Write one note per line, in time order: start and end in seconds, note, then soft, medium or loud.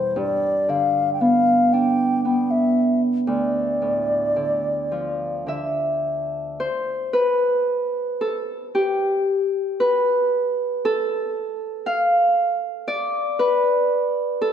0.00 0.21 E2 soft
0.00 0.21 B2 soft
0.00 0.21 E3 soft
0.00 0.21 G3 soft
0.00 0.20 C5 medium
0.16 3.33 G2 soft
0.16 0.71 D5 medium
0.69 3.33 D3 soft
0.69 1.13 F5 medium
1.14 1.22 G5 soft
1.21 2.24 B3 soft
1.21 1.74 F5 medium
1.73 4.53 D4 soft
1.73 2.24 G5 medium
2.25 5.35 B3 soft
2.25 2.52 G5 medium
2.51 3.02 E5 medium
3.27 6.63 D2 soft
3.27 5.44 D5 medium
3.82 4.41 A2 soft
4.36 5.45 D3 soft
4.92 5.53 F3 soft
5.46 6.63 D3 soft
5.46 7.21 E5 medium
6.60 7.19 C5 medium
7.13 9.18 B4 medium
8.21 8.35 A4 medium
8.75 11.10 G4 medium
9.80 11.85 B4 medium
10.85 13.05 A4 medium
11.86 13.53 F5 medium
12.88 14.53 D5 medium
13.39 14.53 B4 medium
14.42 14.53 A4 medium